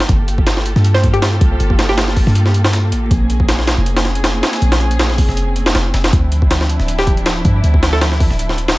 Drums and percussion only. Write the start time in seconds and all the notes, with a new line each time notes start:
0.00 snare, closed hi-hat
0.09 kick, closed hi-hat
0.28 closed hi-hat
0.38 kick
0.47 snare, closed hi-hat
0.57 snare
0.66 closed hi-hat
0.76 snare
0.84 closed hi-hat
0.95 snare
1.03 kick, closed hi-hat
1.14 closed hi-hat
1.22 snare, closed hi-hat
1.33 closed hi-hat
1.41 kick, closed hi-hat
1.60 closed hi-hat
1.70 kick
1.79 snare, closed hi-hat
1.89 snare
1.98 snare, closed hi-hat
2.08 snare
2.17 kick, closed hi-hat, open hi-hat
2.27 snare
2.35 closed hi-hat
2.46 snare
2.54 closed hi-hat
2.64 snare
2.73 snare, closed hi-hat
2.92 closed hi-hat
3.11 kick, closed hi-hat
3.30 closed hi-hat
3.40 kick
3.49 snare, closed hi-hat
3.59 snare
3.67 snare, closed hi-hat
3.86 closed hi-hat
3.97 snare, closed hi-hat
4.05 snare, closed hi-hat
4.15 closed hi-hat
4.24 snare, closed hi-hat
4.34 closed hi-hat
4.43 snare, closed hi-hat
4.53 snare, closed hi-hat
4.62 closed hi-hat
4.72 snare, closed hi-hat
4.81 closed hi-hat
4.91 closed hi-hat
4.99 snare, closed hi-hat
5.10 snare
5.18 kick, closed hi-hat, open hi-hat
5.29 snare
5.37 closed hi-hat
5.56 closed hi-hat
5.66 snare
5.75 snare, closed hi-hat
5.94 snare, closed hi-hat
6.04 snare, closed hi-hat
6.13 kick, closed hi-hat
6.32 closed hi-hat
6.42 kick
6.51 snare, closed hi-hat
6.61 snare
6.69 closed hi-hat
6.80 snare
6.88 closed hi-hat
6.98 snare
7.07 kick, closed hi-hat
7.17 closed hi-hat
7.26 snare, closed hi-hat
7.36 closed hi-hat
7.45 kick, closed hi-hat
7.64 closed hi-hat
7.74 kick
7.83 snare, closed hi-hat
7.93 snare
8.01 snare, closed hi-hat
8.12 snare
8.20 kick, closed hi-hat, open hi-hat
8.30 snare
8.39 closed hi-hat
8.49 snare
8.58 closed hi-hat
8.68 snare